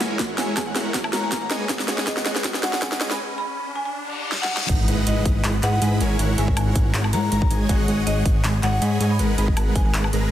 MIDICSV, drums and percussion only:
0, 0, Header, 1, 2, 480
1, 0, Start_track
1, 0, Tempo, 375000
1, 247, Time_signature, 4, 2, 24, 8
1, 13198, End_track
2, 0, Start_track
2, 0, Title_t, "Drums"
2, 6, Note_on_c, 9, 38, 82
2, 6, Note_on_c, 9, 42, 64
2, 134, Note_off_c, 9, 38, 0
2, 134, Note_off_c, 9, 42, 0
2, 246, Note_on_c, 9, 36, 96
2, 246, Note_on_c, 9, 38, 83
2, 246, Note_on_c, 9, 42, 74
2, 374, Note_off_c, 9, 36, 0
2, 374, Note_off_c, 9, 38, 0
2, 374, Note_off_c, 9, 42, 0
2, 487, Note_on_c, 9, 38, 85
2, 487, Note_on_c, 9, 42, 63
2, 615, Note_off_c, 9, 38, 0
2, 615, Note_off_c, 9, 42, 0
2, 727, Note_on_c, 9, 36, 101
2, 727, Note_on_c, 9, 38, 90
2, 727, Note_on_c, 9, 42, 77
2, 727, Note_on_c, 9, 76, 60
2, 855, Note_off_c, 9, 36, 0
2, 855, Note_off_c, 9, 38, 0
2, 855, Note_off_c, 9, 42, 0
2, 855, Note_off_c, 9, 76, 0
2, 967, Note_on_c, 9, 38, 87
2, 967, Note_on_c, 9, 42, 64
2, 1095, Note_off_c, 9, 38, 0
2, 1095, Note_off_c, 9, 42, 0
2, 1207, Note_on_c, 9, 36, 100
2, 1207, Note_on_c, 9, 38, 88
2, 1207, Note_on_c, 9, 42, 76
2, 1334, Note_on_c, 9, 76, 78
2, 1335, Note_off_c, 9, 36, 0
2, 1335, Note_off_c, 9, 38, 0
2, 1335, Note_off_c, 9, 42, 0
2, 1446, Note_on_c, 9, 38, 85
2, 1446, Note_on_c, 9, 42, 62
2, 1462, Note_off_c, 9, 76, 0
2, 1574, Note_off_c, 9, 38, 0
2, 1574, Note_off_c, 9, 42, 0
2, 1687, Note_on_c, 9, 36, 101
2, 1687, Note_on_c, 9, 38, 90
2, 1687, Note_on_c, 9, 42, 80
2, 1815, Note_off_c, 9, 36, 0
2, 1815, Note_off_c, 9, 38, 0
2, 1815, Note_off_c, 9, 42, 0
2, 1927, Note_on_c, 9, 38, 92
2, 1927, Note_on_c, 9, 42, 62
2, 2055, Note_off_c, 9, 38, 0
2, 2055, Note_off_c, 9, 42, 0
2, 2167, Note_on_c, 9, 36, 96
2, 2167, Note_on_c, 9, 38, 95
2, 2167, Note_on_c, 9, 42, 79
2, 2295, Note_off_c, 9, 36, 0
2, 2295, Note_off_c, 9, 38, 0
2, 2295, Note_off_c, 9, 42, 0
2, 2295, Note_on_c, 9, 38, 84
2, 2407, Note_off_c, 9, 38, 0
2, 2407, Note_on_c, 9, 38, 91
2, 2407, Note_on_c, 9, 42, 65
2, 2535, Note_off_c, 9, 38, 0
2, 2535, Note_off_c, 9, 42, 0
2, 2535, Note_on_c, 9, 38, 86
2, 2647, Note_off_c, 9, 38, 0
2, 2647, Note_on_c, 9, 36, 100
2, 2647, Note_on_c, 9, 38, 97
2, 2647, Note_on_c, 9, 42, 78
2, 2775, Note_off_c, 9, 36, 0
2, 2775, Note_off_c, 9, 38, 0
2, 2775, Note_off_c, 9, 42, 0
2, 2775, Note_on_c, 9, 38, 84
2, 2887, Note_off_c, 9, 38, 0
2, 2887, Note_on_c, 9, 38, 93
2, 2887, Note_on_c, 9, 42, 65
2, 3015, Note_off_c, 9, 38, 0
2, 3015, Note_off_c, 9, 42, 0
2, 3016, Note_on_c, 9, 38, 85
2, 3127, Note_off_c, 9, 38, 0
2, 3127, Note_on_c, 9, 36, 100
2, 3127, Note_on_c, 9, 38, 101
2, 3127, Note_on_c, 9, 42, 80
2, 3255, Note_off_c, 9, 36, 0
2, 3255, Note_off_c, 9, 38, 0
2, 3255, Note_off_c, 9, 42, 0
2, 3255, Note_on_c, 9, 38, 85
2, 3367, Note_off_c, 9, 38, 0
2, 3367, Note_on_c, 9, 38, 98
2, 3367, Note_on_c, 9, 42, 66
2, 3495, Note_off_c, 9, 38, 0
2, 3495, Note_off_c, 9, 42, 0
2, 3496, Note_on_c, 9, 38, 85
2, 3607, Note_on_c, 9, 36, 101
2, 3608, Note_off_c, 9, 38, 0
2, 3608, Note_on_c, 9, 38, 102
2, 3608, Note_on_c, 9, 42, 82
2, 3735, Note_off_c, 9, 36, 0
2, 3736, Note_off_c, 9, 38, 0
2, 3736, Note_off_c, 9, 42, 0
2, 3736, Note_on_c, 9, 38, 89
2, 3848, Note_off_c, 9, 38, 0
2, 3848, Note_on_c, 9, 38, 102
2, 3848, Note_on_c, 9, 42, 65
2, 3976, Note_off_c, 9, 38, 0
2, 3976, Note_off_c, 9, 42, 0
2, 3976, Note_on_c, 9, 38, 92
2, 4104, Note_off_c, 9, 38, 0
2, 5528, Note_on_c, 9, 38, 70
2, 5656, Note_off_c, 9, 38, 0
2, 5687, Note_on_c, 9, 38, 85
2, 5815, Note_off_c, 9, 38, 0
2, 5848, Note_on_c, 9, 38, 97
2, 5976, Note_off_c, 9, 38, 0
2, 6007, Note_on_c, 9, 36, 121
2, 6007, Note_on_c, 9, 42, 81
2, 6007, Note_on_c, 9, 49, 101
2, 6135, Note_off_c, 9, 36, 0
2, 6135, Note_off_c, 9, 42, 0
2, 6135, Note_off_c, 9, 49, 0
2, 6247, Note_on_c, 9, 42, 70
2, 6375, Note_off_c, 9, 42, 0
2, 6487, Note_on_c, 9, 42, 83
2, 6615, Note_off_c, 9, 42, 0
2, 6727, Note_on_c, 9, 36, 110
2, 6727, Note_on_c, 9, 42, 69
2, 6855, Note_off_c, 9, 36, 0
2, 6855, Note_off_c, 9, 42, 0
2, 6967, Note_on_c, 9, 39, 124
2, 6967, Note_on_c, 9, 42, 82
2, 7095, Note_off_c, 9, 39, 0
2, 7095, Note_off_c, 9, 42, 0
2, 7206, Note_on_c, 9, 39, 37
2, 7206, Note_on_c, 9, 42, 69
2, 7334, Note_off_c, 9, 39, 0
2, 7334, Note_off_c, 9, 42, 0
2, 7447, Note_on_c, 9, 42, 86
2, 7575, Note_off_c, 9, 42, 0
2, 7687, Note_on_c, 9, 42, 69
2, 7815, Note_off_c, 9, 42, 0
2, 7926, Note_on_c, 9, 42, 85
2, 8054, Note_off_c, 9, 42, 0
2, 8166, Note_on_c, 9, 42, 73
2, 8294, Note_off_c, 9, 42, 0
2, 8295, Note_on_c, 9, 36, 65
2, 8407, Note_on_c, 9, 42, 86
2, 8407, Note_on_c, 9, 76, 64
2, 8423, Note_off_c, 9, 36, 0
2, 8535, Note_off_c, 9, 42, 0
2, 8535, Note_off_c, 9, 76, 0
2, 8647, Note_on_c, 9, 36, 113
2, 8647, Note_on_c, 9, 42, 71
2, 8775, Note_off_c, 9, 36, 0
2, 8775, Note_off_c, 9, 42, 0
2, 8887, Note_on_c, 9, 39, 122
2, 8887, Note_on_c, 9, 42, 83
2, 9015, Note_off_c, 9, 39, 0
2, 9015, Note_off_c, 9, 42, 0
2, 9015, Note_on_c, 9, 76, 82
2, 9127, Note_on_c, 9, 42, 72
2, 9143, Note_off_c, 9, 76, 0
2, 9255, Note_off_c, 9, 42, 0
2, 9367, Note_on_c, 9, 42, 89
2, 9495, Note_off_c, 9, 42, 0
2, 9495, Note_on_c, 9, 36, 113
2, 9607, Note_on_c, 9, 42, 70
2, 9623, Note_off_c, 9, 36, 0
2, 9735, Note_off_c, 9, 42, 0
2, 9847, Note_on_c, 9, 36, 122
2, 9847, Note_on_c, 9, 42, 79
2, 9975, Note_off_c, 9, 36, 0
2, 9975, Note_off_c, 9, 42, 0
2, 10088, Note_on_c, 9, 42, 68
2, 10216, Note_off_c, 9, 42, 0
2, 10328, Note_on_c, 9, 42, 83
2, 10456, Note_off_c, 9, 42, 0
2, 10567, Note_on_c, 9, 36, 116
2, 10568, Note_on_c, 9, 42, 69
2, 10695, Note_off_c, 9, 36, 0
2, 10696, Note_off_c, 9, 42, 0
2, 10808, Note_on_c, 9, 39, 127
2, 10808, Note_on_c, 9, 42, 83
2, 10936, Note_off_c, 9, 39, 0
2, 10936, Note_off_c, 9, 42, 0
2, 11047, Note_on_c, 9, 39, 40
2, 11047, Note_on_c, 9, 42, 69
2, 11175, Note_off_c, 9, 39, 0
2, 11175, Note_off_c, 9, 42, 0
2, 11288, Note_on_c, 9, 42, 84
2, 11416, Note_off_c, 9, 42, 0
2, 11527, Note_on_c, 9, 42, 67
2, 11655, Note_off_c, 9, 42, 0
2, 11767, Note_on_c, 9, 42, 80
2, 11895, Note_off_c, 9, 42, 0
2, 12008, Note_on_c, 9, 42, 68
2, 12135, Note_on_c, 9, 36, 63
2, 12136, Note_off_c, 9, 42, 0
2, 12247, Note_on_c, 9, 42, 83
2, 12247, Note_on_c, 9, 76, 60
2, 12263, Note_off_c, 9, 36, 0
2, 12375, Note_off_c, 9, 42, 0
2, 12375, Note_off_c, 9, 76, 0
2, 12487, Note_on_c, 9, 36, 114
2, 12487, Note_on_c, 9, 42, 66
2, 12615, Note_off_c, 9, 36, 0
2, 12615, Note_off_c, 9, 42, 0
2, 12726, Note_on_c, 9, 39, 127
2, 12726, Note_on_c, 9, 42, 81
2, 12854, Note_off_c, 9, 39, 0
2, 12854, Note_off_c, 9, 42, 0
2, 12854, Note_on_c, 9, 76, 75
2, 12966, Note_on_c, 9, 42, 67
2, 12982, Note_off_c, 9, 76, 0
2, 13094, Note_off_c, 9, 42, 0
2, 13198, End_track
0, 0, End_of_file